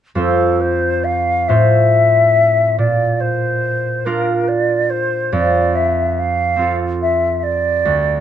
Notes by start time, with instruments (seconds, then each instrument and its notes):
0.15 harp F2 C4 F4 C5, flute A4
0.60 flute C5
1.04 flute F5
1.48 harp A2 C4 F4 C5, flute E5
2.78 harp A#2, flute D5
3.20 flute C5
4.05 harp D4 F4 A#4, flute A#4
4.48 flute D5
4.89 flute C5
5.32 harp F2, flute D5
5.75 flute E5
6.18 flute F5
6.56 harp C4 F4
6.62 harp A4
7.01 flute E5
7.43 flute D5
7.85 harp D2